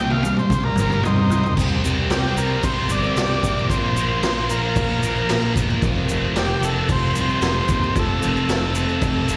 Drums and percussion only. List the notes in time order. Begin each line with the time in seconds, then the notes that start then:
0.10 high tom
0.23 high tom, shaker
0.37 mid tom, shaker
0.50 kick, mid tom, shaker
0.63 mid tom
0.76 mid tom, shaker
0.90 mid tom, shaker
1.03 mid tom, shaker
1.16 floor tom
1.30 floor tom, shaker
1.43 floor tom, shaker
1.57 kick, crash, shaker
1.84 crash, shaker
2.10 snare, crash, shaker
2.37 crash, shaker
2.63 kick, crash, shaker
2.89 crash, shaker
3.03 shaker
3.17 snare, crash, shaker
3.43 kick, crash, shaker
3.58 shaker
3.70 kick, crash, shaker
3.96 crash, shaker
4.23 snare, crash, shaker
4.49 crash, shaker
4.76 kick, crash, shaker
5.03 crash, shaker
5.16 shaker
5.29 snare, crash, shaker
5.56 kick, crash, shaker
5.70 shaker
5.82 kick, crash, shaker
6.09 crash, shaker
6.36 snare, crash, shaker
6.63 crash, shaker
6.89 kick, crash, shaker
7.15 crash, shaker
7.29 shaker
7.42 snare, crash, shaker
7.68 kick, crash, shaker
7.83 shaker
7.96 kick, crash, shaker
8.22 crash, shaker
8.37 shaker
8.49 snare, crash, shaker
8.75 crash, shaker
8.89 shaker
9.01 kick, crash, shaker
9.28 crash, shaker